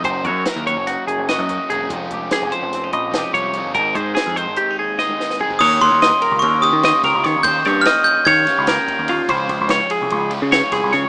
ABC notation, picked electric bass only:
X:1
M:9/8
L:1/16
Q:3/8=98
K:Ebmix
V:1 name="Picked electric bass" clef=bass
_G,,,2 _G,,2 z E,,2 G,,,2 z G,,, G,,,2 G,,2 z _F,,,2 | F,,,2 F,,,2 z F,,, z F,,,3 B,,,2 F,,, z C,,3 G,,, | A,,,2 A,,2 z F,,2 A,,, z8 z2 | E,,2 E,, E,,2 z2 D,, E,,3 E,2 z D,, D,, E, E,, |
E,,2 G,,2 z4 E,2 z D,,2 z2 E,, E,, z | D,,2 D,, D,,2 z2 C,, D,,3 D,2 z C,, C,, D, D,, |]